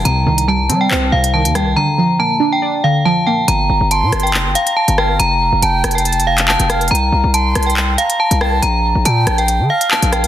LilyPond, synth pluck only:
\new Staff \with { instrumentName = "Synth pluck" } { \clef bass \time 4/4 \key g \minor \tempo 4 = 140 c8 ees8 g8 c'8 c''8 c8 ees8 g8 | d8 f8 bes8 d'8 d''8 d8 f8 bes8 | r1 | r1 |
r1 | r1 | }